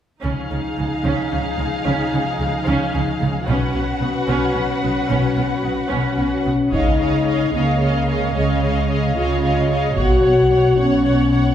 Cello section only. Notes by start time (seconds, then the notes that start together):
0.24 C#3
0.51 C#3
0.78 C#3
1.04 C#3
1.32 C#3
1.58 C#3
1.86 C#3
2.13 C#3
2.40 C#3
2.67 C#3
2.94 C#3
3.21 C#3
3.48 B2
3.76 B2
4.03 B2
4.29 B2
4.56 B2
4.83 B2
5.10 B2
5.37 B2
5.64 B2
5.92 B2
6.18 B2
6.46 B2
6.72 C#3
7.54 C#3
8.34 C#3
9.16 C#3
9.97 B2
10.79 B2